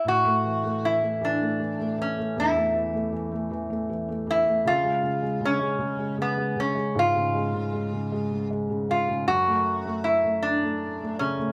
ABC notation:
X:1
M:6/8
L:1/16
Q:3/8=52
K:A
V:1 name="Resonator guitar played with a steel bar"
F4 E2 D4 C2 | E6 z4 E2 | ^E4 C4 B,2 C2 | ^E8 z2 E2 |
F4 E2 D4 C2 |]
V:2 name="Felt piano" clef=bass
A,, A, E, A, E, A, E, A, E, A, E, A, | E,, A, E, A, E, A, E, A, E, A, E, A, | C, G, C, G, C, G, C, G, C, G, C, G, | G,, C, G, C, G, C, G, C, G, C, G, C, |
F,, A,2 A,2 A,2 A,2 A, C, A, |]